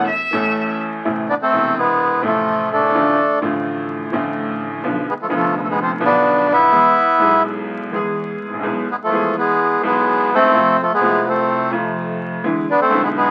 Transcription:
0.07 E5
0.31 A1 A2 E3 A3 C#4 A4
1.05 A1 A2 C3 E3 A3 E4
1.29 B3 D4
1.42 A3 C4
1.51 E1 E2 C3 E3 E4
1.78 G#3 B3
2.21 A1 A2 C3 A3 E4
2.26 F3 A3
2.71 G1 A3 D4
2.78 F#1
2.82 G1
2.88 G#1
2.94 A1 A2 D3 F3 A3 F4
3.41 A1 A2 D3 F3 A3 F4
4.12 A1 A2 D3 F3 A3 F4
4.83 B1 B2 D3 F3 B3 F4
5.09 G#3 B3
5.22 F3 A3
5.28 F1 F2 D3 F3 G#3 B3 F4
5.36 F3 A3
5.58 G#3 B3
5.64 A3
5.70 G#3 B3
5.81 F3 C4
5.99 B1 B2 D3 F3 B3
6.03 B3 D4 F4
6.52 B3 E4
6.72 E2 E3 G#3 B3 G#4
7.18 B1 B2 E3 G#3 B3 G#4
7.92 E2 E3 G#3 B3 G#4
8.41 A1
8.48 G#1
8.53 A1
8.59 A#1
8.63 B1 B2 E3 G#3 B3 G#4
8.91 G#3 B3
9.03 F3 A3
9.10 E2 E3 G#3 B3 G#4
9.39 G#3 B3
9.81 B1 B2 E3 G#3 B3
9.86 G#3 B3 G#4
10.32 D2 D#2 A3 C4
10.42 D#2
10.48 E2
10.54 F2 C3 F3 A3 F4
10.82 F3 A3
10.94 G#3 B3
10.99 C2 C3 F3 A3
11.03 C2 F4
11.28 A3 C4
11.70 F2 C3 F3 A3 F4
12.44 E2 D3 E3 G#3 B3 E4
12.70 B3 D4
12.81 A3 C4
12.89 B1 B2 D3 G#3 B3 E4
13.03 G#3 B3
13.17 G#3 B3

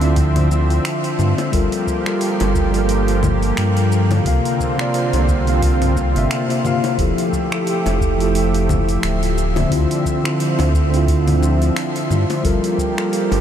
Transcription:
Already playing: D2 D3 F3 C4 E5
0.00 D3 C4 E4, open hi-hat, shaker
0.05 F4
0.16 kick, open hi-hat, shaker
0.36 open hi-hat, low conga
0.51 high bongo, shaker
0.70 open hi-hat, shaker
0.85 finger snap, open hi-hat, shaker
1.04 open hi-hat, shaker
1.19 G2, low conga, shaker
1.38 open hi-hat, high bongo, shaker
1.51 G1 F3 G3 A#3 F4 G4 A4 A#4, kick, open hi-hat, shaker
1.72 open hi-hat, shaker
1.87 kick, shaker
2.05 G3 F4 A4 A#4, finger snap, shaker
2.21 open hi-hat, shaker
2.40 G1, open hi-hat, high bongo, shaker
2.55 kick, shaker
2.72 G3 F4, open hi-hat, shaker
2.76 A4 A#4
2.89 open hi-hat, shaker
3.08 open hi-hat
3.23 kick, high bongo, low conga, shaker
3.43 open hi-hat, shaker
3.57 G2, finger snap, open hi-hat, shaker
3.77 open hi-hat, shaker
3.92 shaker
4.11 open hi-hat, high bongo, low conga, shaker
4.24 C2 C3 D3 A#3 C4 F4 F5, kick, open hi-hat, shaker
4.45 open hi-hat, shaker
4.60 kick, shaker
4.77 C3 A#3 F4 D5, finger snap, shaker
4.94 open hi-hat, shaker
5.13 C2, open hi-hat, high bongo, shaker
5.28 kick, shaker
5.46 C3 A#3 F4 F5, open hi-hat, shaker
5.62 kick, open hi-hat, shaker
5.82 open hi-hat, low conga, shaker
5.96 kick, high bongo, shaker
6.14 G1 C3 A#3 F4 E5, open hi-hat, shaker
6.31 finger snap, open hi-hat, shaker
6.48 C3 A#3 F4 E5, open hi-hat, shaker
6.63 C3 A#3 F4 F5, low conga, shaker
6.84 open hi-hat, high bongo, shaker
6.98 F1 F3 A3 E4 G4 A4 E5, kick, open hi-hat, shaker
7.18 open hi-hat, shaker
7.33 kick, shaker
7.51 F3 E4 G4 A4, finger snap, shaker
7.67 open hi-hat, shaker
7.86 F1, open hi-hat, high bongo, shaker
8.01 kick, shaker
8.17 F3 E4, open hi-hat
8.21 G4 A4, shaker
8.35 open hi-hat, shaker
8.54 open hi-hat
8.69 kick, high bongo, low conga, shaker
8.89 open hi-hat, shaker
9.03 D1, finger snap, open hi-hat, shaker
9.23 open hi-hat, shaker
9.38 D3 C4, shaker
9.56 open hi-hat, high bongo, low conga, shaker
9.69 D2 D3 C4 E4 F4, kick, open hi-hat, shaker
9.91 open hi-hat, shaker
10.05 kick, shaker
10.23 D3 C4 E4 F4, finger snap, shaker
10.40 open hi-hat, shaker
10.59 D2, open hi-hat, high bongo, shaker
10.74 kick, shaker
10.90 D3 C4
10.94 E4 F4, open hi-hat, shaker
11.08 kick, open hi-hat, shaker
11.28 open hi-hat, low conga
11.43 high bongo, shaker
11.62 open hi-hat, shaker
11.76 finger snap, open hi-hat, shaker
11.96 open hi-hat, shaker
12.11 G2, low conga, shaker
12.30 open hi-hat, high bongo, shaker
12.43 G1 G3 A#3 F4 G4 A4 A#4, kick, open hi-hat, shaker
12.64 open hi-hat, shaker
12.78 kick, shaker
12.96 G3 F4 A4 A#4, finger snap, shaker
13.13 open hi-hat, shaker
13.32 G1, open hi-hat, high bongo, shaker

